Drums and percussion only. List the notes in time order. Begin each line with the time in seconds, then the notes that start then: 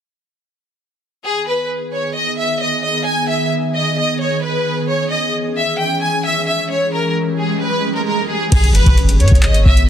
8.52 kick, closed hi-hat, crash
8.64 closed hi-hat
8.75 closed hi-hat
8.86 kick, closed hi-hat
8.97 closed hi-hat
9.09 closed hi-hat
9.20 closed hi-hat
9.28 kick, closed hi-hat
9.35 closed hi-hat
9.43 clap, closed hi-hat
9.54 closed hi-hat
9.66 kick
9.77 closed hi-hat